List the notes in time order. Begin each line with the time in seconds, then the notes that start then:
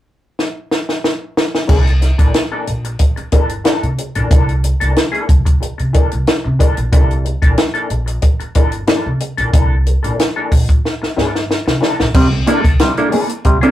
0.39 snare
0.71 snare
0.89 snare
1.04 snare
1.37 snare
1.55 snare
1.67 C2 E3 A#3 D4 A4, kick, crash
1.87 closed hi-hat
2.01 muted clean electric guitar stroke, snare, closed hi-hat
2.18 A#1 E3 A#3 D4 A4, kick, closed hi-hat
2.34 muted clean electric guitar stroke, snare, closed hi-hat
2.52 E3 A#3 D4 A4
2.67 A#1, muted clean electric guitar stroke, closed hi-hat
2.85 muted clean electric guitar stroke, closed hi-hat
2.99 muted clean electric guitar stroke, kick, closed hi-hat
3.16 muted clean electric guitar stroke, muted upright bass stroke, closed hi-hat
3.32 G1 E3 A#3 D4 A4, kick, closed hi-hat
3.49 muted clean electric guitar stroke, closed hi-hat
3.64 E3 A#3 D4 A4, snare, closed hi-hat
3.83 C3, closed hi-hat
3.98 muted clean electric guitar stroke, closed hi-hat
4.15 A#1 E3 A#3 D4 A4, closed hi-hat
4.30 C2 E3 A#3 D4 A4, kick, closed hi-hat
4.49 closed hi-hat
4.64 muted clean electric guitar stroke, closed hi-hat
4.80 C2 E3 A#3 D4 A4, closed hi-hat
4.95 muted clean electric guitar stroke, snare, closed hi-hat
5.12 E3 A#3 D4 A4, closed hi-hat
5.28 C2, muted clean electric guitar stroke, kick, closed hi-hat
5.45 muted clean electric guitar stroke, kick, closed hi-hat
5.61 muted clean electric guitar stroke, muted upright bass stroke, closed hi-hat
5.78 C3, muted clean electric guitar stroke, closed hi-hat
5.93 E3 A#3 D4 A4, kick, closed hi-hat
6.11 C2, muted clean electric guitar stroke, closed hi-hat
6.27 muted clean electric guitar stroke, snare, closed hi-hat
6.44 C3, muted clean electric guitar stroke
6.59 E3 A#3 D4 A4, kick, closed hi-hat
6.77 A#1, muted clean electric guitar stroke, closed hi-hat
6.92 C2 E3 A#3 D4 A4, kick, closed hi-hat
7.11 closed hi-hat
7.24 muted clean electric guitar stroke, closed hi-hat
7.42 A#1 E3 A#3 D4 A4, kick, closed hi-hat
7.57 muted clean electric guitar stroke, snare, closed hi-hat
7.74 E3 A#3 D4 A4, closed hi-hat
7.90 A#1, muted clean electric guitar stroke, closed hi-hat
8.06 muted clean electric guitar stroke, closed hi-hat
8.22 muted clean electric guitar stroke, kick, closed hi-hat
8.40 muted clean electric guitar stroke, muted upright bass stroke, closed hi-hat
8.55 G1 E3 A#3 D4 A4, kick, closed hi-hat
8.72 muted clean electric guitar stroke, closed hi-hat
8.87 E3 A#3 D4 A4, snare, closed hi-hat
9.06 C3
9.20 muted clean electric guitar stroke, closed hi-hat
9.37 A#1 E3 A#3 D4 A4, closed hi-hat
9.53 C2 E3 A#3 D4 A4, kick, closed hi-hat
9.86 muted clean electric guitar stroke, closed hi-hat
10.03 A#1 E3 A#3 D4 A4, closed hi-hat
10.18 muted clean electric guitar stroke, snare, closed hi-hat
10.36 E3 A#3 D4 A4
10.52 A#1, muted clean electric guitar stroke, kick, open hi-hat
10.69 muted clean electric guitar stroke, kick, closed hi-hat
10.85 snare
11.02 muted clean electric guitar stroke, muted upright bass stroke, snare
11.17 G1 E3 A#3 D4 A4, snare
11.34 muted clean electric guitar stroke, snare
11.49 muted clean electric guitar stroke, snare
11.66 C3, muted clean electric guitar stroke, snare
11.81 E3 A#3 D4 A4, snare
11.98 A#1, muted clean electric guitar stroke, snare
12.14 C2 C3 G3 C4, kick, crash
12.32 E4 A4, muted clean electric guitar stroke
12.47 E3 A#3 D4 E4 A4, snare, closed hi-hat
12.64 C2, kick, closed hi-hat
12.79 C3 G3, snare, closed hi-hat
12.95 A#3 D4 E4 A4, muted clean electric guitar stroke, closed hi-hat
13.11 E3 A#3 D4 A4, open hi-hat
13.28 muted clean electric guitar stroke, closed hi-hat
13.45 C2 C3 G3, muted clean electric guitar stroke, kick, closed hi-hat
13.61 E3 A#3 C4 D4 E4 A4, closed hi-hat